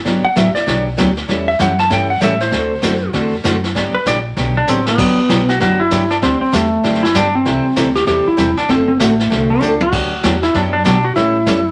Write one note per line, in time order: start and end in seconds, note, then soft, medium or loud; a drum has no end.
0.05 0.23 G1 medium
0.05 0.25 D3 medium
0.05 0.25 F#3 medium
0.05 0.25 B3 medium
0.05 0.25 D4 medium
0.05 0.25 G4 medium
0.05 brush sweep soft
0.05 kick soft
0.05 snare soft
0.24 0.36 F#5 medium
0.24 muted upright bass stroke soft
0.35 0.54 A1 loud
0.35 0.47 D3 medium
0.35 0.47 F#3 medium
0.35 0.47 B3 medium
0.35 0.47 D4 medium
0.35 0.47 G4 medium
0.35 0.54 E5 medium
0.35 kick soft
0.35 snare medium
0.35 hi-hat pedal medium
0.55 0.83 D5 medium
0.55 muted upright bass stroke soft
0.55 snare soft
0.66 0.97 B1 medium
0.66 0.87 D3 medium
0.66 0.87 F#3 medium
0.66 0.87 B3 medium
0.66 0.87 D4 medium
0.66 0.87 G4 medium
0.66 brush sweep soft
0.66 kick soft
0.66 snare medium
0.97 1.28 D2 medium
0.97 1.08 D3 medium
0.97 1.09 F#3 medium
0.97 1.09 B3 medium
0.97 1.09 D4 medium
0.97 1.09 G4 medium
0.97 kick soft
0.97 snare medium
0.97 hi-hat pedal soft
1.17 snare soft
1.28 1.59 E2 medium
1.28 1.48 E3 medium
1.28 1.48 G3 medium
1.28 1.49 C#4 medium
1.28 1.49 E4 medium
1.28 1.49 A4 medium
1.28 brush sweep soft
1.28 kick soft
1.28 snare soft
1.48 1.59 E5 medium
1.59 1.89 F#2 loud
1.59 1.70 E3 medium
1.59 1.70 G3 medium
1.59 1.70 C#4 medium
1.59 1.70 E4 medium
1.59 1.71 A4 medium
1.59 1.79 F#5 medium
1.59 kick soft
1.59 snare medium
1.59 hi-hat pedal medium
1.78 1.90 A5 medium
1.78 snare soft
1.90 2.20 G2 medium
1.90 2.10 E3 medium
1.90 2.10 G3 medium
1.90 2.10 C#4 medium
1.90 2.10 E4 medium
1.90 2.10 A4 medium
1.90 2.10 G5 medium
1.90 brush sweep medium
1.90 kick soft
1.90 snare soft
2.10 2.21 F#5 medium
2.21 2.51 A2 loud
2.21 2.32 E3 medium
2.21 2.32 G3 medium
2.21 2.32 C#4 medium
2.21 2.32 E4 medium
2.21 2.32 A4 medium
2.21 2.41 E5 medium
2.21 kick soft
2.21 snare medium
2.21 hi-hat pedal medium
2.40 3.10 C5 medium
2.40 snare soft
2.51 2.82 D2 medium
2.51 2.71 D3 medium
2.51 2.72 A3 medium
2.51 2.72 C4 medium
2.51 2.72 F#4 medium
2.51 2.72 A4 medium
2.51 brush sweep medium
2.51 kick soft
2.51 snare soft
2.82 3.13 F#2 loud
2.82 2.93 D3 medium
2.82 2.93 A3 medium
2.82 2.94 C4 medium
2.82 2.94 F#4 medium
2.82 2.94 A4 medium
2.82 kick soft
2.82 snare medium
2.82 hi-hat pedal medium
3.13 3.44 E2 medium
3.13 3.33 D3 medium
3.13 3.33 A3 medium
3.13 3.34 C4 medium
3.13 3.34 F#4 medium
3.13 3.34 A4 medium
3.13 brush sweep soft
3.13 kick soft
3.13 snare medium
3.44 3.74 F#2 medium
3.44 3.55 D3 medium
3.44 3.55 A3 medium
3.44 3.55 C4 medium
3.44 3.55 F#4 medium
3.44 3.56 A4 medium
3.44 kick soft
3.44 snare medium
3.44 hi-hat pedal medium
3.64 snare soft
3.75 3.93 G2 medium
3.75 3.95 D3 medium
3.75 3.95 F#3 medium
3.75 3.95 B3 medium
3.75 3.96 D4 medium
3.75 3.96 G4 medium
3.75 brush sweep soft
3.75 kick soft
3.75 snare soft
3.94 4.06 B4 medium
3.94 muted upright bass stroke soft
4.06 4.36 A#1 medium
4.06 4.17 D3 medium
4.06 4.17 F#3 medium
4.06 4.17 B3 medium
4.06 4.17 D4 medium
4.06 4.17 G4 medium
4.06 4.18 D5 loud
4.06 kick soft
4.06 snare medium
4.06 hi-hat pedal medium
4.36 4.67 B1 loud
4.36 4.57 D3 medium
4.36 4.57 F#3 medium
4.36 4.57 B3 medium
4.36 4.57 D4 medium
4.36 4.57 G4 medium
4.36 brush sweep soft
4.36 kick soft
4.36 snare soft
4.57 4.69 D4 medium
4.67 4.97 A1 medium
4.67 4.79 D3 medium
4.67 4.79 F#3 medium
4.67 4.79 B3 medium
4.67 4.88 C4 loud
4.67 4.79 D4 medium
4.67 4.79 G4 loud
4.67 hi-hat pedal medium
4.86 5.51 B3 loud
4.86 snare medium
4.98 5.29 G1 medium
4.98 5.18 D3 medium
4.98 5.18 F#3 medium
4.98 5.18 B3 medium
4.98 5.18 D4 medium
4.98 5.19 G4 medium
4.98 brush sweep medium
4.98 kick medium
4.98 snare soft
4.98 crash medium
5.29 5.59 B1 medium
5.29 5.40 D3 medium
5.29 5.40 F#3 medium
5.29 5.40 B3 medium
5.29 5.41 D4 medium
5.29 5.41 G4 medium
5.29 kick soft
5.29 snare medium
5.29 hi-hat pedal medium
5.48 5.60 F#4 medium
5.48 snare soft
5.60 5.90 F#2 medium
5.60 5.80 D3 medium
5.60 5.80 F#3 medium
5.60 5.81 B3 medium
5.60 5.81 D4 medium
5.60 5.80 F#4 loud
5.60 5.81 G4 medium
5.60 brush sweep medium
5.60 kick soft
5.60 snare soft
5.80 6.11 E4 medium
5.91 6.21 G2 medium
5.91 6.02 D3 medium
5.91 6.02 F#3 medium
5.91 6.02 B3 medium
5.91 6.02 D4 medium
5.91 6.03 G4 medium
5.91 kick soft
5.91 snare medium
5.91 hi-hat pedal medium
6.10 6.16 D4 medium
6.10 snare soft
6.22 6.40 D2 medium
6.22 6.42 D3 medium
6.22 6.42 G3 medium
6.22 6.42 C4 medium
6.22 6.40 C4 loud
6.22 6.43 D4 medium
6.22 6.43 G4 medium
6.22 brush sweep medium
6.22 kick soft
6.22 snare soft
6.41 6.53 C4 medium
6.41 muted upright bass stroke soft
6.52 6.83 E2 loud
6.52 6.64 D3 medium
6.52 6.64 G3 medium
6.52 7.05 A3 medium
6.52 6.64 C4 medium
6.52 6.64 D4 medium
6.52 6.64 G4 medium
6.52 kick soft
6.52 snare medium
6.52 hi-hat pedal medium
6.83 7.14 F#2 medium
6.83 7.04 D3 medium
6.83 7.04 G3 medium
6.83 7.04 C4 medium
6.83 7.04 D4 medium
6.83 7.04 G4 medium
6.83 brush sweep soft
6.83 kick soft
6.83 snare medium
6.94 snare soft
7.03 7.15 E4 medium
7.03 snare soft
7.14 7.45 G2 medium
7.14 7.25 D3 medium
7.14 7.26 G3 medium
7.14 7.26 C4 medium
7.14 7.26 D4 medium
7.14 7.34 D4 loud
7.14 7.26 G4 medium
7.14 kick soft
7.14 snare medium
7.14 hi-hat pedal medium
7.35 7.92 C4 medium
7.45 7.63 C2 medium
7.45 7.65 C3 medium
7.45 7.66 E3 medium
7.45 7.66 G3 medium
7.45 7.66 C4 medium
7.45 7.66 E4 medium
7.45 7.66 A4 medium
7.45 brush sweep medium
7.45 kick soft
7.45 snare soft
7.76 8.06 D2 loud
7.76 7.87 C3 medium
7.76 7.87 E3 medium
7.76 7.87 G3 medium
7.76 7.88 C4 medium
7.76 7.88 E4 medium
7.76 7.88 A4 medium
7.76 kick soft
7.76 snare medium
7.76 hi-hat pedal medium
7.95 8.06 G4 medium
7.95 snare soft
8.06 8.25 E2 medium
8.06 8.27 C3 medium
8.06 8.27 E3 medium
8.06 8.27 G3 medium
8.06 8.27 C4 medium
8.06 8.27 E4 medium
8.06 8.27 G4 loud
8.06 8.27 A4 medium
8.06 brush sweep soft
8.06 kick soft
8.06 snare soft
8.27 8.56 E4 medium
8.27 muted upright bass stroke soft
8.37 8.56 E1 medium
8.37 8.48 C3 medium
8.37 8.49 E3 medium
8.37 8.49 G3 medium
8.37 8.49 C4 medium
8.37 8.49 E4 medium
8.37 8.49 A4 medium
8.37 kick soft
8.37 snare medium
8.37 hi-hat pedal medium
8.57 8.70 D4 loud
8.57 muted upright bass stroke soft
8.57 snare soft
8.68 8.99 F#1 medium
8.68 8.89 D3 medium
8.68 8.89 A3 medium
8.68 8.89 C4 medium
8.68 8.87 C4 loud
8.68 8.89 F#4 medium
8.68 8.89 A4 medium
8.68 brush sweep soft
8.68 kick soft
8.68 snare soft
8.88 9.00 C4 medium
8.99 9.30 A1 loud
8.99 9.11 D3 medium
8.99 9.11 A3 medium
8.99 9.51 A3 medium
8.99 9.11 C4 medium
8.99 9.11 F#4 medium
8.99 9.11 A4 medium
8.99 kick soft
8.99 snare medium
8.99 hi-hat pedal medium
9.19 snare soft
9.30 9.61 C2 medium
9.30 9.50 D3 medium
9.30 9.51 A3 medium
9.30 9.51 C4 medium
9.30 9.51 F#4 medium
9.30 9.51 A4 medium
9.30 brush sweep soft
9.30 kick soft
9.30 snare soft
9.50 9.82 D4 medium
9.61 9.92 C#2 medium
9.61 9.72 D3 medium
9.61 9.72 A3 medium
9.61 9.72 C4 medium
9.61 9.72 F#4 medium
9.61 9.73 A4 medium
9.61 hi-hat pedal medium
9.80 10.43 F#4 loud
9.80 high tom medium
9.92 10.23 D2 medium
9.92 10.12 D3 medium
9.92 10.12 F#3 medium
9.92 10.12 B3 medium
9.92 10.12 D4 medium
9.92 10.13 G4 medium
9.92 brush sweep soft
9.92 kick medium
9.92 snare soft
9.92 crash medium
10.23 10.53 E2 loud
10.23 10.34 D3 medium
10.23 10.34 F#3 medium
10.23 10.34 B3 medium
10.23 10.34 D4 medium
10.23 10.35 G4 medium
10.23 kick soft
10.23 snare medium
10.23 hi-hat pedal medium
10.42 10.55 E4 medium
10.42 snare soft
10.54 10.84 F#2 medium
10.54 10.74 D3 medium
10.54 10.74 F#3 medium
10.54 10.74 B3 medium
10.54 10.74 D4 medium
10.54 10.60 D4 loud
10.54 10.75 G4 medium
10.54 brush sweep medium
10.54 kick soft
10.54 snare soft
10.73 10.85 D4 medium
10.84 11.15 B2 medium
10.84 10.96 D3 medium
10.84 10.96 F#3 medium
10.84 10.96 B3 medium
10.84 10.96 D4 medium
10.84 11.05 D4 loud
10.84 10.96 G4 medium
10.84 kick soft
10.84 snare medium
10.84 hi-hat pedal medium
11.04 11.15 F#4 medium
11.15 11.46 A2 medium
11.15 11.36 E3 soft
11.15 11.36 G3 medium
11.15 11.36 C#4 medium
11.15 11.71 E4 loud
11.15 11.36 E4 medium
11.15 11.36 A4 medium
11.15 brush sweep soft
11.15 kick soft
11.15 snare soft
11.46 11.71 F#2 loud
11.46 11.57 E3 medium
11.46 11.58 G3 medium
11.46 11.58 C#4 medium
11.46 11.58 E4 medium
11.46 11.58 A4 medium
11.46 kick soft
11.46 snare medium
11.46 hi-hat pedal medium